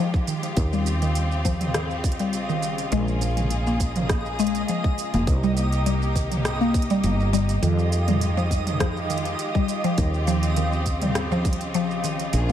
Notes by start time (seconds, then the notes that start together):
Already playing: D#3 G#3 F4 G4 D#5
0.00 F3
0.14 kick, shaker
0.27 D#3, closed hi-hat, shaker
0.43 closed hi-hat, shaker
0.57 D#2 C#3 C4, kick, closed hi-hat, shaker
0.73 G3, shaker
0.86 closed hi-hat, shaker
1.02 D#3, closed hi-hat, shaker
1.15 closed hi-hat, shaker
1.32 shaker
1.45 F3, kick, closed hi-hat, shaker
1.61 closed hi-hat, mid tom, shaker
1.74 D#3, cross-stick, closed hi-hat, shaker
1.91 shaker
2.04 kick, closed hi-hat, shaker
2.12 closed hi-hat
2.19 G3, closed hi-hat, shaker
2.33 A#1, closed hi-hat, shaker
2.49 D#3, shaker
2.62 closed hi-hat, shaker
2.78 closed hi-hat, shaker
2.92 A#1 G#3 A#3 G#4, closed hi-hat, shaker
3.08 shaker
3.21 F3, closed hi-hat, shaker
3.37 closed hi-hat, mid tom, shaker
3.51 closed hi-hat, shaker
3.67 A#3, shaker
3.80 kick, closed hi-hat, shaker
3.96 F3, closed hi-hat, mid tom, shaker
4.09 kick, cross-stick, closed hi-hat, shaker
4.26 shaker
4.39 G#3, closed hi-hat, shaker
4.47 closed hi-hat
4.55 closed hi-hat, shaker
4.68 F3, closed hi-hat, shaker
4.84 kick, shaker
4.98 closed hi-hat, shaker
5.14 F1 A#3, closed hi-hat, shaker
5.27 C2 C3 A#3 D#4 G4, kick, closed hi-hat, shaker
5.43 G3, shaker
5.57 closed hi-hat, shaker
5.72 closed hi-hat, shaker
5.86 G3, closed hi-hat, shaker
6.02 shaker
6.16 D#3, kick, closed hi-hat, shaker
6.32 closed hi-hat, mid tom, shaker
6.45 cross-stick, closed hi-hat, shaker
6.61 A#3, shaker
6.74 kick, closed hi-hat, shaker
6.82 closed hi-hat
6.90 G3, closed hi-hat, shaker
7.04 G1, closed hi-hat, shaker
7.20 shaker
7.33 G3, closed hi-hat, shaker
7.49 closed hi-hat, shaker
7.62 F2 D#3 G#3 F4 G4, closed hi-hat, shaker
7.79 shaker
7.92 closed hi-hat, shaker
8.08 G3, closed hi-hat, mid tom, shaker
8.21 closed hi-hat, shaker
8.37 F3, shaker
8.51 kick, closed hi-hat, shaker
8.67 closed hi-hat, mid tom, shaker
8.80 F3, kick, cross-stick, closed hi-hat, shaker
8.97 shaker
9.10 D#3, closed hi-hat, shaker
9.18 closed hi-hat
9.25 closed hi-hat, shaker
9.39 closed hi-hat, shaker
9.55 G3, kick, shaker
9.68 closed hi-hat, shaker
9.84 F3, closed hi-hat, shaker
9.98 D#2 C#3 C4, kick, closed hi-hat, shaker
10.14 shaker
10.27 F3, closed hi-hat, shaker
10.43 closed hi-hat, shaker
10.56 D#3, closed hi-hat, shaker
10.73 shaker
10.86 kick, closed hi-hat, shaker
11.02 G3, closed hi-hat, mid tom, shaker
11.15 cross-stick, closed hi-hat, shaker
11.32 F3, shaker
11.45 kick, closed hi-hat, shaker
11.53 closed hi-hat
11.61 closed hi-hat, shaker
11.74 A#1 F3, closed hi-hat, shaker
11.91 shaker
12.04 D#3, closed hi-hat, shaker
12.20 closed hi-hat, shaker
12.33 A#1 A#3 G#4, closed hi-hat, shaker